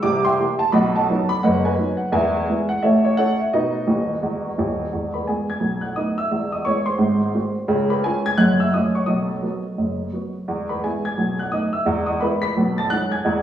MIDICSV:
0, 0, Header, 1, 2, 480
1, 0, Start_track
1, 0, Tempo, 347826
1, 1017, Time_signature, 4, 2, 24, 8
1, 18524, End_track
2, 0, Start_track
2, 0, Title_t, "Upright piano"
2, 0, Program_c, 0, 0
2, 35, Note_on_c, 0, 86, 109
2, 41, Note_on_c, 0, 36, 80
2, 43, Note_on_c, 0, 48, 92
2, 293, Control_c, 0, 64, 127
2, 339, Note_on_c, 0, 84, 98
2, 343, Note_off_c, 0, 86, 0
2, 358, Note_on_c, 0, 76, 63
2, 361, Note_on_c, 0, 79, 72
2, 456, Note_off_c, 0, 36, 0
2, 457, Note_off_c, 0, 48, 0
2, 530, Note_on_c, 0, 52, 55
2, 539, Note_on_c, 0, 58, 47
2, 545, Note_on_c, 0, 67, 57
2, 556, Control_c, 0, 64, 0
2, 796, Note_off_c, 0, 52, 0
2, 803, Note_off_c, 0, 58, 0
2, 803, Note_off_c, 0, 76, 0
2, 805, Note_off_c, 0, 79, 0
2, 807, Note_off_c, 0, 67, 0
2, 814, Note_on_c, 0, 81, 93
2, 827, Note_off_c, 0, 84, 0
2, 997, Note_on_c, 0, 83, 94
2, 1006, Note_on_c, 0, 47, 97
2, 1007, Note_off_c, 0, 81, 0
2, 1007, Note_on_c, 0, 35, 90
2, 1015, Note_on_c, 0, 78, 75
2, 1017, Note_on_c, 0, 75, 85
2, 1259, Control_c, 0, 64, 127
2, 1293, Note_off_c, 0, 78, 0
2, 1294, Note_off_c, 0, 75, 0
2, 1305, Note_off_c, 0, 83, 0
2, 1319, Note_on_c, 0, 81, 88
2, 1331, Note_on_c, 0, 78, 59
2, 1332, Note_on_c, 0, 75, 68
2, 1419, Note_off_c, 0, 47, 0
2, 1420, Note_off_c, 0, 35, 0
2, 1515, Note_on_c, 0, 54, 69
2, 1515, Note_on_c, 0, 59, 61
2, 1518, Control_c, 0, 64, 0
2, 1527, Note_on_c, 0, 63, 62
2, 1771, Note_off_c, 0, 78, 0
2, 1772, Note_off_c, 0, 75, 0
2, 1775, Note_off_c, 0, 54, 0
2, 1775, Note_off_c, 0, 59, 0
2, 1782, Note_on_c, 0, 83, 105
2, 1783, Note_off_c, 0, 63, 0
2, 1798, Note_off_c, 0, 81, 0
2, 1972, Note_off_c, 0, 83, 0
2, 1976, Note_on_c, 0, 78, 89
2, 1985, Note_on_c, 0, 42, 75
2, 1991, Note_on_c, 0, 30, 88
2, 1997, Note_on_c, 0, 75, 75
2, 1998, Note_on_c, 0, 71, 67
2, 2264, Note_off_c, 0, 71, 0
2, 2265, Note_off_c, 0, 75, 0
2, 2275, Note_off_c, 0, 78, 0
2, 2277, Note_on_c, 0, 80, 79
2, 2285, Note_on_c, 0, 71, 75
2, 2291, Note_on_c, 0, 75, 66
2, 2391, Note_off_c, 0, 42, 0
2, 2394, Note_off_c, 0, 30, 0
2, 2453, Note_on_c, 0, 54, 52
2, 2463, Note_on_c, 0, 59, 47
2, 2476, Note_on_c, 0, 63, 51
2, 2719, Note_off_c, 0, 54, 0
2, 2719, Note_on_c, 0, 78, 72
2, 2726, Note_off_c, 0, 59, 0
2, 2728, Note_off_c, 0, 71, 0
2, 2732, Note_off_c, 0, 75, 0
2, 2736, Note_off_c, 0, 63, 0
2, 2758, Note_off_c, 0, 80, 0
2, 2921, Note_off_c, 0, 78, 0
2, 2926, Note_on_c, 0, 40, 100
2, 2934, Note_on_c, 0, 28, 75
2, 2934, Note_on_c, 0, 71, 72
2, 2934, Note_on_c, 0, 80, 96
2, 2951, Note_on_c, 0, 76, 78
2, 3186, Control_c, 0, 64, 127
2, 3341, Note_off_c, 0, 40, 0
2, 3345, Note_off_c, 0, 28, 0
2, 3429, Note_on_c, 0, 56, 59
2, 3432, Note_on_c, 0, 59, 55
2, 3436, Control_c, 0, 64, 0
2, 3437, Note_on_c, 0, 64, 59
2, 3661, Note_off_c, 0, 71, 0
2, 3670, Note_off_c, 0, 76, 0
2, 3691, Note_off_c, 0, 56, 0
2, 3694, Note_off_c, 0, 59, 0
2, 3697, Note_off_c, 0, 64, 0
2, 3710, Note_on_c, 0, 78, 93
2, 3716, Note_off_c, 0, 80, 0
2, 3897, Note_off_c, 0, 78, 0
2, 3899, Note_on_c, 0, 76, 85
2, 3904, Note_on_c, 0, 33, 62
2, 3904, Note_on_c, 0, 45, 78
2, 3915, Note_on_c, 0, 69, 70
2, 3920, Note_on_c, 0, 73, 69
2, 4140, Control_c, 0, 64, 127
2, 4182, Note_off_c, 0, 73, 0
2, 4185, Note_off_c, 0, 69, 0
2, 4198, Note_off_c, 0, 76, 0
2, 4203, Note_on_c, 0, 73, 79
2, 4311, Note_off_c, 0, 33, 0
2, 4311, Note_off_c, 0, 45, 0
2, 4375, Note_off_c, 0, 73, 0
2, 4379, Note_on_c, 0, 78, 104
2, 4386, Note_on_c, 0, 57, 43
2, 4391, Note_on_c, 0, 61, 43
2, 4392, Note_on_c, 0, 64, 57
2, 4396, Note_on_c, 0, 73, 74
2, 4398, Note_on_c, 0, 69, 76
2, 4402, Control_c, 0, 64, 0
2, 4649, Note_off_c, 0, 57, 0
2, 4652, Note_off_c, 0, 61, 0
2, 4653, Note_off_c, 0, 64, 0
2, 4666, Note_off_c, 0, 73, 0
2, 4667, Note_off_c, 0, 69, 0
2, 4678, Note_off_c, 0, 78, 0
2, 4684, Note_on_c, 0, 76, 65
2, 4864, Note_off_c, 0, 76, 0
2, 4875, Note_on_c, 0, 75, 90
2, 4883, Note_on_c, 0, 47, 78
2, 4886, Note_on_c, 0, 66, 64
2, 4893, Note_on_c, 0, 71, 61
2, 4901, Note_on_c, 0, 63, 79
2, 5112, Control_c, 0, 64, 127
2, 5259, Note_off_c, 0, 47, 0
2, 5269, Note_off_c, 0, 63, 0
2, 5344, Note_on_c, 0, 27, 74
2, 5345, Note_on_c, 0, 39, 73
2, 5356, Control_c, 0, 64, 0
2, 5703, Note_off_c, 0, 27, 0
2, 5704, Note_off_c, 0, 39, 0
2, 5834, Note_on_c, 0, 28, 60
2, 5835, Note_on_c, 0, 40, 68
2, 6189, Note_off_c, 0, 28, 0
2, 6190, Note_off_c, 0, 40, 0
2, 6259, Note_off_c, 0, 66, 0
2, 6263, Note_off_c, 0, 71, 0
2, 6309, Note_off_c, 0, 75, 0
2, 6323, Note_on_c, 0, 27, 70
2, 6330, Note_on_c, 0, 39, 71
2, 6675, Note_off_c, 0, 27, 0
2, 6680, Note_off_c, 0, 39, 0
2, 6797, Note_on_c, 0, 40, 61
2, 6804, Note_on_c, 0, 28, 64
2, 7019, Control_c, 0, 64, 127
2, 7091, Note_on_c, 0, 83, 63
2, 7106, Note_on_c, 0, 71, 46
2, 7199, Note_off_c, 0, 40, 0
2, 7203, Note_off_c, 0, 28, 0
2, 7264, Note_off_c, 0, 71, 0
2, 7268, Note_off_c, 0, 83, 0
2, 7279, Note_on_c, 0, 80, 69
2, 7280, Control_c, 0, 64, 0
2, 7287, Note_on_c, 0, 56, 38
2, 7290, Note_on_c, 0, 59, 52
2, 7302, Note_on_c, 0, 68, 60
2, 7544, Note_off_c, 0, 56, 0
2, 7546, Note_off_c, 0, 59, 0
2, 7561, Note_off_c, 0, 68, 0
2, 7568, Note_off_c, 0, 80, 0
2, 7586, Note_on_c, 0, 92, 72
2, 7600, Note_on_c, 0, 80, 57
2, 7728, Note_on_c, 0, 47, 59
2, 7734, Note_on_c, 0, 35, 59
2, 7989, Control_c, 0, 64, 127
2, 8022, Note_on_c, 0, 90, 55
2, 8028, Note_off_c, 0, 80, 0
2, 8037, Note_on_c, 0, 78, 53
2, 8053, Note_off_c, 0, 92, 0
2, 8142, Note_off_c, 0, 47, 0
2, 8146, Note_off_c, 0, 35, 0
2, 8209, Note_off_c, 0, 78, 0
2, 8214, Note_off_c, 0, 90, 0
2, 8225, Note_on_c, 0, 87, 72
2, 8231, Note_on_c, 0, 57, 35
2, 8234, Note_on_c, 0, 75, 59
2, 8237, Note_on_c, 0, 59, 45
2, 8240, Control_c, 0, 64, 0
2, 8241, Note_on_c, 0, 63, 43
2, 8493, Note_off_c, 0, 57, 0
2, 8497, Note_off_c, 0, 59, 0
2, 8500, Note_off_c, 0, 63, 0
2, 8505, Note_off_c, 0, 75, 0
2, 8521, Note_off_c, 0, 87, 0
2, 8526, Note_on_c, 0, 88, 81
2, 8545, Note_on_c, 0, 76, 54
2, 8714, Note_on_c, 0, 28, 64
2, 8716, Note_on_c, 0, 40, 68
2, 8943, Control_c, 0, 64, 127
2, 8980, Note_off_c, 0, 76, 0
2, 9002, Note_on_c, 0, 87, 73
2, 9004, Note_off_c, 0, 88, 0
2, 9027, Note_on_c, 0, 75, 50
2, 9118, Note_off_c, 0, 28, 0
2, 9118, Note_off_c, 0, 40, 0
2, 9175, Note_on_c, 0, 85, 83
2, 9184, Note_off_c, 0, 75, 0
2, 9184, Note_off_c, 0, 87, 0
2, 9184, Note_on_c, 0, 59, 44
2, 9190, Note_on_c, 0, 56, 45
2, 9195, Note_on_c, 0, 73, 72
2, 9199, Note_on_c, 0, 64, 46
2, 9204, Control_c, 0, 64, 0
2, 9448, Note_off_c, 0, 59, 0
2, 9452, Note_off_c, 0, 56, 0
2, 9459, Note_off_c, 0, 64, 0
2, 9464, Note_on_c, 0, 84, 84
2, 9466, Note_off_c, 0, 73, 0
2, 9477, Note_off_c, 0, 85, 0
2, 9483, Note_on_c, 0, 72, 56
2, 9635, Note_on_c, 0, 32, 74
2, 9641, Note_on_c, 0, 44, 77
2, 9902, Control_c, 0, 64, 127
2, 10055, Note_off_c, 0, 32, 0
2, 10058, Note_off_c, 0, 44, 0
2, 10129, Note_on_c, 0, 56, 41
2, 10138, Note_on_c, 0, 60, 38
2, 10145, Note_on_c, 0, 66, 53
2, 10162, Control_c, 0, 64, 0
2, 10397, Note_off_c, 0, 56, 0
2, 10403, Note_off_c, 0, 60, 0
2, 10408, Note_off_c, 0, 66, 0
2, 10569, Note_off_c, 0, 72, 0
2, 10600, Note_on_c, 0, 49, 96
2, 10602, Note_on_c, 0, 37, 77
2, 10615, Note_off_c, 0, 84, 0
2, 10865, Control_c, 0, 64, 127
2, 10904, Note_on_c, 0, 83, 84
2, 10915, Note_on_c, 0, 71, 62
2, 11018, Note_off_c, 0, 37, 0
2, 11018, Note_off_c, 0, 49, 0
2, 11087, Note_off_c, 0, 71, 0
2, 11095, Note_off_c, 0, 83, 0
2, 11096, Note_on_c, 0, 80, 95
2, 11109, Note_on_c, 0, 56, 51
2, 11113, Note_on_c, 0, 61, 61
2, 11114, Note_on_c, 0, 68, 63
2, 11121, Note_on_c, 0, 65, 56
2, 11122, Control_c, 0, 64, 0
2, 11371, Note_off_c, 0, 56, 0
2, 11374, Note_off_c, 0, 61, 0
2, 11379, Note_off_c, 0, 65, 0
2, 11385, Note_off_c, 0, 68, 0
2, 11397, Note_off_c, 0, 80, 0
2, 11397, Note_on_c, 0, 92, 101
2, 11420, Note_on_c, 0, 80, 75
2, 11558, Note_on_c, 0, 90, 101
2, 11566, Note_on_c, 0, 30, 78
2, 11566, Note_on_c, 0, 42, 79
2, 11579, Note_on_c, 0, 78, 64
2, 11580, Note_off_c, 0, 80, 0
2, 11581, Note_off_c, 0, 92, 0
2, 11818, Control_c, 0, 64, 127
2, 11857, Note_off_c, 0, 78, 0
2, 11868, Note_off_c, 0, 90, 0
2, 11869, Note_on_c, 0, 88, 79
2, 11882, Note_on_c, 0, 76, 57
2, 11981, Note_off_c, 0, 30, 0
2, 11981, Note_off_c, 0, 42, 0
2, 12051, Note_off_c, 0, 76, 0
2, 12057, Note_off_c, 0, 88, 0
2, 12059, Note_on_c, 0, 87, 81
2, 12070, Note_on_c, 0, 57, 46
2, 12070, Note_on_c, 0, 61, 46
2, 12076, Note_on_c, 0, 66, 46
2, 12076, Note_on_c, 0, 75, 60
2, 12080, Control_c, 0, 64, 0
2, 12331, Note_off_c, 0, 57, 0
2, 12332, Note_off_c, 0, 61, 0
2, 12336, Note_off_c, 0, 66, 0
2, 12346, Note_off_c, 0, 75, 0
2, 12354, Note_on_c, 0, 85, 78
2, 12358, Note_off_c, 0, 87, 0
2, 12372, Note_on_c, 0, 73, 55
2, 12507, Note_on_c, 0, 87, 82
2, 12517, Note_on_c, 0, 35, 66
2, 12519, Note_on_c, 0, 47, 73
2, 12529, Note_on_c, 0, 75, 55
2, 12536, Note_off_c, 0, 73, 0
2, 12539, Note_off_c, 0, 85, 0
2, 12793, Control_c, 0, 64, 127
2, 12935, Note_off_c, 0, 35, 0
2, 12936, Note_off_c, 0, 47, 0
2, 13003, Note_on_c, 0, 54, 50
2, 13010, Note_on_c, 0, 59, 41
2, 13025, Note_on_c, 0, 66, 46
2, 13034, Control_c, 0, 64, 0
2, 13272, Note_off_c, 0, 54, 0
2, 13277, Note_off_c, 0, 59, 0
2, 13288, Note_off_c, 0, 66, 0
2, 13497, Note_on_c, 0, 30, 55
2, 13501, Note_on_c, 0, 42, 54
2, 13906, Note_off_c, 0, 30, 0
2, 13909, Note_off_c, 0, 42, 0
2, 13977, Note_on_c, 0, 54, 34
2, 13986, Note_on_c, 0, 59, 42
2, 13991, Note_on_c, 0, 66, 41
2, 14216, Note_off_c, 0, 75, 0
2, 14242, Note_off_c, 0, 54, 0
2, 14248, Note_off_c, 0, 59, 0
2, 14252, Note_off_c, 0, 66, 0
2, 14261, Note_off_c, 0, 87, 0
2, 14463, Note_on_c, 0, 28, 62
2, 14463, Note_on_c, 0, 40, 75
2, 14698, Control_c, 0, 64, 127
2, 14757, Note_on_c, 0, 83, 66
2, 14771, Note_on_c, 0, 71, 46
2, 14869, Note_off_c, 0, 40, 0
2, 14870, Note_off_c, 0, 28, 0
2, 14934, Note_off_c, 0, 71, 0
2, 14940, Note_off_c, 0, 83, 0
2, 14955, Note_on_c, 0, 56, 44
2, 14957, Note_on_c, 0, 80, 80
2, 14958, Note_on_c, 0, 68, 52
2, 14961, Control_c, 0, 64, 0
2, 14961, Note_on_c, 0, 59, 48
2, 14971, Note_on_c, 0, 64, 46
2, 15215, Note_off_c, 0, 56, 0
2, 15219, Note_off_c, 0, 59, 0
2, 15226, Note_off_c, 0, 64, 0
2, 15226, Note_off_c, 0, 68, 0
2, 15245, Note_off_c, 0, 80, 0
2, 15251, Note_on_c, 0, 92, 80
2, 15265, Note_on_c, 0, 80, 57
2, 15425, Note_on_c, 0, 47, 66
2, 15427, Note_on_c, 0, 35, 61
2, 15658, Control_c, 0, 64, 127
2, 15698, Note_off_c, 0, 80, 0
2, 15723, Note_off_c, 0, 92, 0
2, 15723, Note_on_c, 0, 90, 67
2, 15748, Note_on_c, 0, 78, 56
2, 15830, Note_off_c, 0, 47, 0
2, 15832, Note_off_c, 0, 35, 0
2, 15894, Note_on_c, 0, 87, 76
2, 15902, Note_off_c, 0, 90, 0
2, 15903, Note_off_c, 0, 78, 0
2, 15903, Note_on_c, 0, 59, 38
2, 15905, Note_on_c, 0, 57, 43
2, 15906, Note_on_c, 0, 75, 64
2, 15911, Note_on_c, 0, 63, 42
2, 15920, Control_c, 0, 64, 0
2, 16165, Note_off_c, 0, 59, 0
2, 16167, Note_off_c, 0, 57, 0
2, 16172, Note_off_c, 0, 63, 0
2, 16179, Note_off_c, 0, 75, 0
2, 16186, Note_on_c, 0, 88, 73
2, 16194, Note_off_c, 0, 87, 0
2, 16203, Note_on_c, 0, 76, 57
2, 16361, Note_on_c, 0, 28, 77
2, 16368, Note_on_c, 0, 40, 92
2, 16370, Note_off_c, 0, 76, 0
2, 16374, Note_off_c, 0, 88, 0
2, 16624, Control_c, 0, 64, 127
2, 16649, Note_on_c, 0, 87, 72
2, 16677, Note_on_c, 0, 75, 55
2, 16776, Note_off_c, 0, 28, 0
2, 16780, Note_off_c, 0, 40, 0
2, 16844, Note_on_c, 0, 83, 80
2, 16845, Note_off_c, 0, 87, 0
2, 16846, Note_off_c, 0, 75, 0
2, 16855, Note_on_c, 0, 56, 49
2, 16864, Note_on_c, 0, 59, 53
2, 16867, Note_on_c, 0, 71, 77
2, 16874, Control_c, 0, 64, 0
2, 16876, Note_on_c, 0, 64, 65
2, 17120, Note_off_c, 0, 56, 0
2, 17126, Note_off_c, 0, 59, 0
2, 17134, Note_off_c, 0, 83, 0
2, 17135, Note_off_c, 0, 64, 0
2, 17135, Note_on_c, 0, 95, 100
2, 17139, Note_off_c, 0, 71, 0
2, 17154, Note_on_c, 0, 83, 74
2, 17343, Note_on_c, 0, 35, 70
2, 17355, Note_on_c, 0, 47, 81
2, 17586, Control_c, 0, 64, 127
2, 17601, Note_off_c, 0, 83, 0
2, 17625, Note_off_c, 0, 95, 0
2, 17637, Note_on_c, 0, 93, 91
2, 17651, Note_on_c, 0, 81, 70
2, 17748, Note_off_c, 0, 35, 0
2, 17755, Note_off_c, 0, 47, 0
2, 17804, Note_on_c, 0, 90, 103
2, 17812, Note_on_c, 0, 56, 45
2, 17813, Note_off_c, 0, 81, 0
2, 17817, Note_on_c, 0, 61, 54
2, 17818, Note_off_c, 0, 93, 0
2, 17822, Note_on_c, 0, 63, 49
2, 17824, Note_on_c, 0, 78, 66
2, 17832, Control_c, 0, 64, 0
2, 18077, Note_off_c, 0, 56, 0
2, 18081, Note_off_c, 0, 61, 0
2, 18084, Note_off_c, 0, 63, 0
2, 18097, Note_off_c, 0, 78, 0
2, 18100, Note_on_c, 0, 92, 83
2, 18108, Note_off_c, 0, 90, 0
2, 18115, Note_on_c, 0, 80, 68
2, 18282, Note_on_c, 0, 40, 84
2, 18284, Note_off_c, 0, 80, 0
2, 18284, Note_on_c, 0, 28, 82
2, 18290, Note_off_c, 0, 92, 0
2, 18524, Note_off_c, 0, 28, 0
2, 18524, Note_off_c, 0, 40, 0
2, 18524, End_track
0, 0, End_of_file